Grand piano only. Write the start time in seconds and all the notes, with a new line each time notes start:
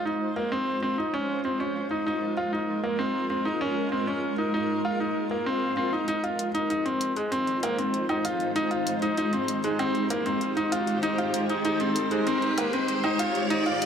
0.05 D#4
0.36 A#3
0.52 C4
0.83 C4
0.98 D#4
1.14 C#4
1.45 C4
1.60 C#4
1.91 D#4
2.07 D#4
2.37 F4
2.53 D#4
2.84 A#3
2.99 C4
3.30 C4
3.45 D#4
3.61 C#4
3.92 C4
4.07 C#4
4.38 D#4
4.54 D#4
4.85 F4
5.00 D#4
5.31 A#3
5.46 C4
5.77 C4
5.93 D#4
6.08 D#4
6.24 F4
6.54 D#4
6.70 D#4
6.86 C4
7.17 G#3
7.32 C4
7.63 A#3
7.78 C4
8.09 D#4
8.25 F4
8.56 D#4
8.71 F4
9.02 D#4
9.18 D#4
9.33 C4
9.64 G#3
9.79 C4
10.10 A#3
10.26 C4
10.57 D#4
10.72 F4
11.03 D#4
11.18 F4
11.50 D#4
11.65 D#4
11.81 C4
12.12 G#3
12.27 C4
12.58 A#3
12.73 C4
13.04 D#4
13.19 F4
13.50 D#4
13.66 F4